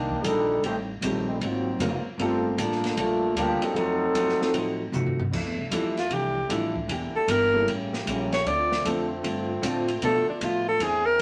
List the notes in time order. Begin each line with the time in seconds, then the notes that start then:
Already playing: C2 D#3 G3 A#3 D4 G4
0.11 kick
0.24 A#1 D#3 G3 A#3 D4 D#4 A4, hi-hat pedal, ride
0.63 A1 A2 D#3 G3 A3 C4 G4, ride
0.67 D#4
1.01 A#1 A2 D#3 G3 A3 C4 G4, hi-hat pedal, ride
1.06 D#4
1.27 G3 A3 C4 D#4
1.40 G#1 G#2 D#3 F#3 A#3 C4, ride
1.44 C4 F4
1.79 F1 G#2 F#3 A#3 C4 F4 A#4, hi-hat pedal, ride
2.04 muted upright bass stroke
2.18 G1 F3 G3 A3 A#3 C4 D4 F4 A4, ride
2.22 A4
2.57 A1 F3 G3 A3 A#3 D4 F4 A4, hi-hat pedal, ride
2.72 snare
2.84 snare, ride
2.96 A#1 G3 A3 A#3 D4 F4 A4, ride
3.34 D2 F3 G3 A#3 D4 F4 G4, hi-hat pedal, ride
3.39 A4
3.60 F#3 C4 D#4 F4 A4, muted upright bass stroke, ride
3.74 F2 F3 F#3 A3 C4 D#4 A4, ride
3.78 F#4
4.13 F#2 F3 A3 D#4, hi-hat pedal, ride
4.18 F#4
4.29 snare
4.38 F#3 C4 D#4 F4 A4, muted upright bass stroke, snare
4.53 A2 F3 A3 D#4, ride
4.58 F#4
4.92 C3 F3 A3 D#4 F#4, floor tom, hi-hat pedal
5.06 floor tom
5.19 floor tom
5.31 F2 D3 E3 G3 A3 D4 E4, kick, crash
5.44 E2
5.57 C2
5.70 E2 F2 E3 G3 A3 D4 E4 F4 A4, hi-hat pedal, ride
5.97 F4, snare, ride
6.10 C2 F2 E3 A3 D4 G4, ride
6.49 A1 F2 E3 G3 A3 D4 E4 F4 A4, hi-hat pedal, ride
6.76 kick
6.88 E1 E3 A#3 D4 E4 G4, ride
7.14 A4, muted upright bass stroke
7.28 G1 E3 A#3 D4 G4 A#4, hi-hat pedal, ride
7.53 G3 A#3 C#4 E4 A4
7.66 A1 A2 C#3 G3 A3 A#3 G4, ride
7.71 C#4
7.93 snare
8.06 A#1 A2 G3 A#3 C#4, hi-hat pedal, ride
8.32 C#5, snare, ride
8.45 D2 D3 A3 C4 F4 D5, ride
8.49 F4
8.72 snare
8.84 F2 D3 F3 A3 C4 D4 F4 A4, hi-hat pedal, ride
9.23 G2 D3 A3 C4 F4, ride
9.62 A2 D3 F3 A3 C4 D4 F4, hi-hat pedal, ride
9.88 ride
10.02 B2 F3 A3 B3 D4 A4, ride
10.27 D4, muted upright bass stroke
10.41 A2 B2 F3 A3 D4 F4, hi-hat pedal, ride
10.68 A4
10.80 E2 E3 G#3 C4 D4 E4 G#4, ride
10.84 G#4
11.06 A#4